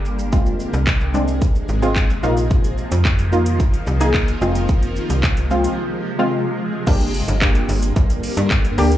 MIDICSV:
0, 0, Header, 1, 5, 480
1, 0, Start_track
1, 0, Tempo, 545455
1, 287, Time_signature, 4, 2, 24, 8
1, 7900, End_track
2, 0, Start_track
2, 0, Title_t, "Synth stab"
2, 0, Program_c, 0, 62
2, 285, Note_on_c, 0, 56, 82
2, 287, Note_on_c, 0, 60, 76
2, 289, Note_on_c, 0, 65, 85
2, 620, Note_off_c, 0, 56, 0
2, 621, Note_off_c, 0, 60, 0
2, 622, Note_off_c, 0, 65, 0
2, 1004, Note_on_c, 0, 56, 86
2, 1006, Note_on_c, 0, 60, 81
2, 1008, Note_on_c, 0, 62, 96
2, 1284, Note_off_c, 0, 56, 0
2, 1285, Note_off_c, 0, 60, 0
2, 1286, Note_off_c, 0, 62, 0
2, 1604, Note_on_c, 0, 56, 100
2, 1606, Note_on_c, 0, 60, 96
2, 1608, Note_on_c, 0, 65, 107
2, 1884, Note_off_c, 0, 56, 0
2, 1885, Note_off_c, 0, 60, 0
2, 1886, Note_off_c, 0, 65, 0
2, 1964, Note_on_c, 0, 58, 93
2, 1966, Note_on_c, 0, 63, 87
2, 1968, Note_on_c, 0, 65, 104
2, 2733, Note_off_c, 0, 58, 0
2, 2734, Note_off_c, 0, 63, 0
2, 2735, Note_off_c, 0, 65, 0
2, 2924, Note_on_c, 0, 58, 86
2, 2926, Note_on_c, 0, 63, 79
2, 2929, Note_on_c, 0, 65, 99
2, 3204, Note_off_c, 0, 58, 0
2, 3205, Note_off_c, 0, 63, 0
2, 3206, Note_off_c, 0, 65, 0
2, 3524, Note_on_c, 0, 58, 99
2, 3526, Note_on_c, 0, 63, 98
2, 3528, Note_on_c, 0, 68, 109
2, 3804, Note_off_c, 0, 58, 0
2, 3805, Note_off_c, 0, 63, 0
2, 3806, Note_off_c, 0, 68, 0
2, 3884, Note_on_c, 0, 56, 98
2, 3886, Note_on_c, 0, 60, 90
2, 3888, Note_on_c, 0, 65, 101
2, 4653, Note_off_c, 0, 56, 0
2, 4654, Note_off_c, 0, 60, 0
2, 4655, Note_off_c, 0, 65, 0
2, 4844, Note_on_c, 0, 56, 85
2, 4846, Note_on_c, 0, 60, 82
2, 4848, Note_on_c, 0, 65, 97
2, 5124, Note_off_c, 0, 56, 0
2, 5125, Note_off_c, 0, 60, 0
2, 5126, Note_off_c, 0, 65, 0
2, 5444, Note_on_c, 0, 56, 97
2, 5446, Note_on_c, 0, 60, 93
2, 5449, Note_on_c, 0, 65, 116
2, 5724, Note_off_c, 0, 56, 0
2, 5725, Note_off_c, 0, 60, 0
2, 5727, Note_off_c, 0, 65, 0
2, 6044, Note_on_c, 0, 58, 88
2, 6046, Note_on_c, 0, 62, 79
2, 6048, Note_on_c, 0, 67, 100
2, 6268, Note_off_c, 0, 58, 0
2, 6270, Note_off_c, 0, 62, 0
2, 6271, Note_off_c, 0, 67, 0
2, 6525, Note_on_c, 0, 58, 81
2, 6527, Note_on_c, 0, 62, 73
2, 6529, Note_on_c, 0, 67, 88
2, 6972, Note_off_c, 0, 58, 0
2, 6973, Note_off_c, 0, 62, 0
2, 6974, Note_off_c, 0, 67, 0
2, 7725, Note_on_c, 0, 58, 97
2, 7727, Note_on_c, 0, 62, 91
2, 7729, Note_on_c, 0, 67, 109
2, 7837, Note_off_c, 0, 58, 0
2, 7838, Note_off_c, 0, 62, 0
2, 7839, Note_off_c, 0, 67, 0
2, 7900, End_track
3, 0, Start_track
3, 0, Title_t, "Ambient pad"
3, 0, Program_c, 1, 92
3, 0, Note_on_c, 1, 50, 82
3, 0, Note_on_c, 1, 55, 76
3, 0, Note_on_c, 1, 58, 93
3, 268, Note_off_c, 1, 50, 0
3, 268, Note_off_c, 1, 55, 0
3, 268, Note_off_c, 1, 58, 0
3, 286, Note_on_c, 1, 48, 82
3, 287, Note_on_c, 1, 53, 77
3, 287, Note_on_c, 1, 56, 92
3, 1950, Note_off_c, 1, 48, 0
3, 1950, Note_off_c, 1, 56, 0
3, 1966, Note_on_c, 1, 58, 96
3, 1967, Note_on_c, 1, 51, 87
3, 3867, Note_off_c, 1, 51, 0
3, 3867, Note_off_c, 1, 58, 0
3, 3887, Note_on_c, 1, 48, 84
3, 3887, Note_on_c, 1, 56, 97
3, 6011, Note_off_c, 1, 53, 0
3, 6025, Note_off_c, 1, 48, 0
3, 6025, Note_off_c, 1, 56, 0
3, 6047, Note_on_c, 1, 50, 87
3, 6047, Note_on_c, 1, 55, 81
3, 6047, Note_on_c, 1, 58, 95
3, 7900, Note_off_c, 1, 50, 0
3, 7900, Note_off_c, 1, 55, 0
3, 7900, Note_off_c, 1, 58, 0
3, 7900, End_track
4, 0, Start_track
4, 0, Title_t, "FM bass"
4, 0, Program_c, 2, 39
4, 0, Note_on_c, 2, 31, 92
4, 287, Note_on_c, 2, 29, 101
4, 300, Note_off_c, 2, 31, 0
4, 592, Note_off_c, 2, 29, 0
4, 647, Note_on_c, 2, 36, 90
4, 1358, Note_off_c, 2, 36, 0
4, 1486, Note_on_c, 2, 32, 87
4, 1893, Note_off_c, 2, 32, 0
4, 1967, Note_on_c, 2, 34, 99
4, 2475, Note_off_c, 2, 34, 0
4, 2567, Note_on_c, 2, 41, 93
4, 3278, Note_off_c, 2, 41, 0
4, 3406, Note_on_c, 2, 36, 94
4, 3813, Note_off_c, 2, 36, 0
4, 3887, Note_on_c, 2, 29, 102
4, 4395, Note_off_c, 2, 29, 0
4, 4487, Note_on_c, 2, 36, 88
4, 4995, Note_off_c, 2, 36, 0
4, 6047, Note_on_c, 2, 31, 116
4, 6352, Note_off_c, 2, 31, 0
4, 6407, Note_on_c, 2, 31, 100
4, 6712, Note_off_c, 2, 31, 0
4, 6767, Note_on_c, 2, 31, 94
4, 6970, Note_off_c, 2, 31, 0
4, 7007, Note_on_c, 2, 31, 101
4, 7210, Note_off_c, 2, 31, 0
4, 7367, Note_on_c, 2, 43, 104
4, 7671, Note_off_c, 2, 43, 0
4, 7727, Note_on_c, 2, 38, 90
4, 7900, Note_off_c, 2, 38, 0
4, 7900, End_track
5, 0, Start_track
5, 0, Title_t, "Drums"
5, 47, Note_on_c, 9, 82, 52
5, 135, Note_off_c, 9, 82, 0
5, 168, Note_on_c, 9, 82, 75
5, 256, Note_off_c, 9, 82, 0
5, 286, Note_on_c, 9, 82, 69
5, 287, Note_on_c, 9, 36, 116
5, 374, Note_off_c, 9, 82, 0
5, 375, Note_off_c, 9, 36, 0
5, 407, Note_on_c, 9, 82, 52
5, 495, Note_off_c, 9, 82, 0
5, 527, Note_on_c, 9, 82, 52
5, 615, Note_off_c, 9, 82, 0
5, 648, Note_on_c, 9, 82, 81
5, 736, Note_off_c, 9, 82, 0
5, 766, Note_on_c, 9, 36, 113
5, 767, Note_on_c, 9, 82, 83
5, 768, Note_on_c, 9, 39, 114
5, 854, Note_off_c, 9, 36, 0
5, 855, Note_off_c, 9, 82, 0
5, 856, Note_off_c, 9, 39, 0
5, 885, Note_on_c, 9, 82, 45
5, 973, Note_off_c, 9, 82, 0
5, 1007, Note_on_c, 9, 82, 53
5, 1095, Note_off_c, 9, 82, 0
5, 1126, Note_on_c, 9, 82, 80
5, 1214, Note_off_c, 9, 82, 0
5, 1247, Note_on_c, 9, 36, 101
5, 1248, Note_on_c, 9, 82, 80
5, 1335, Note_off_c, 9, 36, 0
5, 1336, Note_off_c, 9, 82, 0
5, 1368, Note_on_c, 9, 82, 51
5, 1456, Note_off_c, 9, 82, 0
5, 1486, Note_on_c, 9, 82, 59
5, 1574, Note_off_c, 9, 82, 0
5, 1607, Note_on_c, 9, 82, 83
5, 1695, Note_off_c, 9, 82, 0
5, 1725, Note_on_c, 9, 39, 124
5, 1726, Note_on_c, 9, 36, 107
5, 1726, Note_on_c, 9, 82, 84
5, 1813, Note_off_c, 9, 39, 0
5, 1814, Note_off_c, 9, 36, 0
5, 1814, Note_off_c, 9, 82, 0
5, 1849, Note_on_c, 9, 82, 52
5, 1937, Note_off_c, 9, 82, 0
5, 1967, Note_on_c, 9, 82, 56
5, 2055, Note_off_c, 9, 82, 0
5, 2088, Note_on_c, 9, 82, 78
5, 2176, Note_off_c, 9, 82, 0
5, 2206, Note_on_c, 9, 82, 71
5, 2207, Note_on_c, 9, 36, 109
5, 2294, Note_off_c, 9, 82, 0
5, 2295, Note_off_c, 9, 36, 0
5, 2327, Note_on_c, 9, 42, 53
5, 2327, Note_on_c, 9, 82, 53
5, 2415, Note_off_c, 9, 42, 0
5, 2415, Note_off_c, 9, 82, 0
5, 2446, Note_on_c, 9, 82, 52
5, 2534, Note_off_c, 9, 82, 0
5, 2568, Note_on_c, 9, 42, 81
5, 2568, Note_on_c, 9, 82, 79
5, 2656, Note_off_c, 9, 42, 0
5, 2656, Note_off_c, 9, 82, 0
5, 2686, Note_on_c, 9, 36, 115
5, 2687, Note_on_c, 9, 39, 116
5, 2687, Note_on_c, 9, 82, 83
5, 2774, Note_off_c, 9, 36, 0
5, 2775, Note_off_c, 9, 39, 0
5, 2775, Note_off_c, 9, 82, 0
5, 2805, Note_on_c, 9, 42, 47
5, 2805, Note_on_c, 9, 82, 46
5, 2893, Note_off_c, 9, 42, 0
5, 2893, Note_off_c, 9, 82, 0
5, 2927, Note_on_c, 9, 82, 56
5, 3015, Note_off_c, 9, 82, 0
5, 3046, Note_on_c, 9, 42, 81
5, 3046, Note_on_c, 9, 82, 80
5, 3134, Note_off_c, 9, 42, 0
5, 3134, Note_off_c, 9, 82, 0
5, 3167, Note_on_c, 9, 36, 99
5, 3167, Note_on_c, 9, 82, 76
5, 3255, Note_off_c, 9, 36, 0
5, 3255, Note_off_c, 9, 82, 0
5, 3288, Note_on_c, 9, 42, 49
5, 3288, Note_on_c, 9, 82, 50
5, 3376, Note_off_c, 9, 42, 0
5, 3376, Note_off_c, 9, 82, 0
5, 3405, Note_on_c, 9, 82, 61
5, 3493, Note_off_c, 9, 82, 0
5, 3527, Note_on_c, 9, 42, 84
5, 3527, Note_on_c, 9, 82, 82
5, 3615, Note_off_c, 9, 42, 0
5, 3615, Note_off_c, 9, 82, 0
5, 3645, Note_on_c, 9, 36, 109
5, 3645, Note_on_c, 9, 39, 121
5, 3645, Note_on_c, 9, 82, 82
5, 3733, Note_off_c, 9, 36, 0
5, 3733, Note_off_c, 9, 39, 0
5, 3733, Note_off_c, 9, 82, 0
5, 3769, Note_on_c, 9, 42, 53
5, 3769, Note_on_c, 9, 82, 53
5, 3857, Note_off_c, 9, 42, 0
5, 3857, Note_off_c, 9, 82, 0
5, 3887, Note_on_c, 9, 82, 53
5, 3975, Note_off_c, 9, 82, 0
5, 4008, Note_on_c, 9, 42, 78
5, 4008, Note_on_c, 9, 82, 78
5, 4096, Note_off_c, 9, 42, 0
5, 4096, Note_off_c, 9, 82, 0
5, 4126, Note_on_c, 9, 82, 74
5, 4127, Note_on_c, 9, 36, 116
5, 4214, Note_off_c, 9, 82, 0
5, 4215, Note_off_c, 9, 36, 0
5, 4247, Note_on_c, 9, 42, 52
5, 4247, Note_on_c, 9, 82, 52
5, 4335, Note_off_c, 9, 42, 0
5, 4335, Note_off_c, 9, 82, 0
5, 4367, Note_on_c, 9, 82, 54
5, 4455, Note_off_c, 9, 82, 0
5, 4488, Note_on_c, 9, 42, 82
5, 4488, Note_on_c, 9, 82, 81
5, 4576, Note_off_c, 9, 42, 0
5, 4576, Note_off_c, 9, 82, 0
5, 4606, Note_on_c, 9, 36, 112
5, 4608, Note_on_c, 9, 39, 118
5, 4608, Note_on_c, 9, 82, 88
5, 4694, Note_off_c, 9, 36, 0
5, 4696, Note_off_c, 9, 39, 0
5, 4696, Note_off_c, 9, 82, 0
5, 4726, Note_on_c, 9, 42, 48
5, 4726, Note_on_c, 9, 82, 46
5, 4814, Note_off_c, 9, 42, 0
5, 4814, Note_off_c, 9, 82, 0
5, 4847, Note_on_c, 9, 82, 56
5, 4935, Note_off_c, 9, 82, 0
5, 4966, Note_on_c, 9, 42, 82
5, 4966, Note_on_c, 9, 82, 80
5, 5054, Note_off_c, 9, 42, 0
5, 5054, Note_off_c, 9, 82, 0
5, 6047, Note_on_c, 9, 36, 118
5, 6047, Note_on_c, 9, 49, 95
5, 6047, Note_on_c, 9, 82, 71
5, 6135, Note_off_c, 9, 36, 0
5, 6135, Note_off_c, 9, 49, 0
5, 6135, Note_off_c, 9, 82, 0
5, 6167, Note_on_c, 9, 42, 53
5, 6167, Note_on_c, 9, 82, 53
5, 6255, Note_off_c, 9, 42, 0
5, 6255, Note_off_c, 9, 82, 0
5, 6287, Note_on_c, 9, 46, 74
5, 6287, Note_on_c, 9, 82, 56
5, 6375, Note_off_c, 9, 46, 0
5, 6375, Note_off_c, 9, 82, 0
5, 6409, Note_on_c, 9, 42, 80
5, 6409, Note_on_c, 9, 82, 82
5, 6497, Note_off_c, 9, 42, 0
5, 6497, Note_off_c, 9, 82, 0
5, 6526, Note_on_c, 9, 36, 115
5, 6528, Note_on_c, 9, 39, 122
5, 6528, Note_on_c, 9, 82, 89
5, 6614, Note_off_c, 9, 36, 0
5, 6616, Note_off_c, 9, 39, 0
5, 6616, Note_off_c, 9, 82, 0
5, 6646, Note_on_c, 9, 42, 49
5, 6646, Note_on_c, 9, 82, 48
5, 6734, Note_off_c, 9, 42, 0
5, 6734, Note_off_c, 9, 82, 0
5, 6767, Note_on_c, 9, 46, 78
5, 6767, Note_on_c, 9, 82, 59
5, 6855, Note_off_c, 9, 46, 0
5, 6855, Note_off_c, 9, 82, 0
5, 6886, Note_on_c, 9, 42, 81
5, 6886, Note_on_c, 9, 82, 82
5, 6974, Note_off_c, 9, 42, 0
5, 6974, Note_off_c, 9, 82, 0
5, 7007, Note_on_c, 9, 36, 105
5, 7008, Note_on_c, 9, 82, 77
5, 7095, Note_off_c, 9, 36, 0
5, 7096, Note_off_c, 9, 82, 0
5, 7128, Note_on_c, 9, 42, 52
5, 7128, Note_on_c, 9, 82, 52
5, 7216, Note_off_c, 9, 42, 0
5, 7216, Note_off_c, 9, 82, 0
5, 7246, Note_on_c, 9, 46, 84
5, 7246, Note_on_c, 9, 82, 61
5, 7334, Note_off_c, 9, 46, 0
5, 7334, Note_off_c, 9, 82, 0
5, 7368, Note_on_c, 9, 42, 87
5, 7368, Note_on_c, 9, 82, 84
5, 7456, Note_off_c, 9, 42, 0
5, 7456, Note_off_c, 9, 82, 0
5, 7486, Note_on_c, 9, 36, 109
5, 7486, Note_on_c, 9, 39, 121
5, 7486, Note_on_c, 9, 82, 81
5, 7574, Note_off_c, 9, 36, 0
5, 7574, Note_off_c, 9, 39, 0
5, 7574, Note_off_c, 9, 82, 0
5, 7609, Note_on_c, 9, 42, 55
5, 7609, Note_on_c, 9, 82, 56
5, 7697, Note_off_c, 9, 42, 0
5, 7697, Note_off_c, 9, 82, 0
5, 7727, Note_on_c, 9, 46, 78
5, 7727, Note_on_c, 9, 82, 54
5, 7815, Note_off_c, 9, 46, 0
5, 7815, Note_off_c, 9, 82, 0
5, 7847, Note_on_c, 9, 42, 81
5, 7847, Note_on_c, 9, 82, 84
5, 7900, Note_off_c, 9, 42, 0
5, 7900, Note_off_c, 9, 82, 0
5, 7900, End_track
0, 0, End_of_file